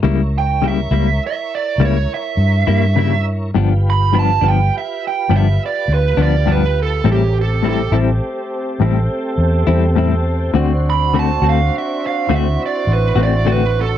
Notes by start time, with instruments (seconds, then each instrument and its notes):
0.03 fingered electric bass C#2, clean electric guitar C#3 G3 A#3 E4, tonewheel organ E4 A#4 C#5
0.38 lead electric guitar G5
0.62 clean electric guitar C#3 G3 A#3 E4
0.68 lead electric guitar E5
0.91 fingered electric bass C#2, clean electric guitar G3 A#3 E4
1.26 lead electric guitar E5
1.55 lead electric guitar D5
1.78 fingered electric bass C#2, clean electric guitar C#3 G3 A#3 E4
1.85 lead electric guitar C#5
2.14 lead electric guitar E5
2.37 fingered electric bass G2
2.67 fingered electric bass G2, clean electric guitar G3 A#3 E4
2.96 clean electric guitar C#3 G3 A#3 E4
3.54 fingered electric bass G1, clean electric guitar G2 F3 B3 D4, tonewheel organ F4 G4 B4
3.90 lead electric guitar B5
4.13 clean electric guitar G2 F3 B3 D4
4.19 lead electric guitar A5
4.41 fingered electric bass G1, clean electric guitar F3 B3 D4
4.48 lead electric guitar G5
4.78 lead electric guitar E5
5.08 lead electric guitar G5
5.30 fingered electric bass G1, clean electric guitar G2 F3 B3 D4
5.37 lead electric guitar E5
5.66 lead electric guitar D5
5.88 fingered electric bass D2
5.94 lead electric guitar B4
6.17 fingered electric bass D2, clean electric guitar F3 B3 D4
6.22 lead electric guitar D5
6.46 clean electric guitar G2 F3 B3 D4
6.52 lead electric guitar B4
6.83 lead electric guitar A4
7.03 fingered electric bass A1, clean electric guitar A2 G3 C4 E4, horn section A3 C4 G4, tonewheel organ C#4 G#4 A#4
7.12 lead electric guitar G4
7.34 tonewheel organ C4 G4 A4
7.41 lead electric guitar A4
7.63 clean electric guitar A2 G3 C4 E4
7.69 lead electric guitar A4
7.92 fingered electric bass A1, clean electric guitar G3 C4 E4
8.80 fingered electric bass A1, clean electric guitar A2 G3 C4 E4, horn section A4
9.38 fingered electric bass E2
9.67 fingered electric bass E2, clean electric guitar G3 C4 E4
9.96 clean electric guitar A2 G3 C4 E4
10.54 fingered electric bass D2, clean electric guitar D3 A3 C4 F#4, horn section D4 F#4, tonewheel organ D4 F#4 C5
10.90 lead electric guitar B5
11.14 clean electric guitar D3 A3 C4 F#4
11.19 lead electric guitar A5
11.42 fingered electric bass D2, clean electric guitar A3 C4 F#4
11.49 lead electric guitar F5
11.78 lead electric guitar E5
12.07 lead electric guitar F5
12.29 fingered electric bass D2, clean electric guitar D3 A3 C4 F#4, horn section E4
12.35 lead electric guitar E5
12.66 lead electric guitar D5
12.87 fingered electric bass A1
12.93 lead electric guitar B4
13.16 fingered electric bass A1, clean electric guitar A3 C4 F#4
13.23 lead electric guitar D5
13.45 clean electric guitar D3 A3 C4 F#4
13.52 lead electric guitar B4
13.81 lead electric guitar A4